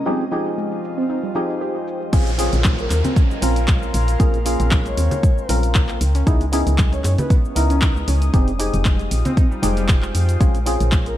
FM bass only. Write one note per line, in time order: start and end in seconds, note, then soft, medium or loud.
2.13 2.49 A#1 medium
2.53 2.88 A#1 medium
2.90 3.02 D#2 medium
3.42 3.91 A#1 medium
3.94 4.16 A#1 loud
4.20 4.56 A#1 loud
4.60 4.95 A#1 medium
4.97 5.09 D#2 medium
5.49 5.98 A#1 medium
6.01 6.23 C#2 loud
6.27 6.63 C#2 medium
6.67 7.01 C#2 medium
7.04 7.16 F#2 medium
7.56 8.05 C#2 medium
8.08 8.30 C#2 loud
8.34 8.70 F1 loud
8.74 9.08 F1 loud
9.11 9.23 A#1 medium
9.63 10.12 F1 medium
10.15 10.37 F2 medium
10.41 10.77 A#1 medium
10.80 11.15 A#1 loud